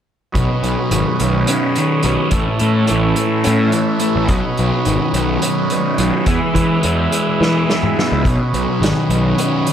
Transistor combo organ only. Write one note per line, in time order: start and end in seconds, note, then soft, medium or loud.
0.32 2.29 F#3 medium
0.32 4.24 C#4 soft
0.32 2.29 B4 medium
0.32 2.29 D#5 medium
2.32 4.28 E3 medium
2.32 4.27 A4 medium
2.32 4.28 E5 medium
4.28 6.25 F#3 medium
4.28 6.25 C#4 soft
4.28 9.73 B4 medium
4.28 6.25 D#5 medium
6.27 8.23 G#3 medium
6.27 8.23 E4 medium
6.27 8.23 E5 medium
8.26 9.73 F#3 medium
8.26 9.73 C#4 medium
8.26 9.73 D#5 medium